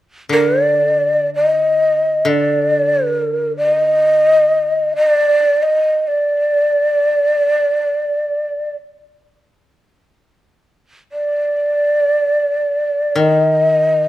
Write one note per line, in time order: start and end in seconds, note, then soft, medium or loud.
0.29 2.24 D3 soft
0.29 0.65 A#4 medium
0.65 1.29 D5 medium
1.35 2.29 D#5 medium
2.25 4.94 D3 soft
2.25 3.16 D5 medium
3.16 3.56 A#4 medium
3.57 3.68 D5 medium
3.68 4.94 D#5 medium
4.96 5.08 D#5 medium
5.08 5.64 D5 medium
5.63 6.09 D#5 medium
6.07 8.74 D5 medium
11.12 13.19 D5 medium
13.15 14.08 D#3 soft
13.15 14.08 D#5 medium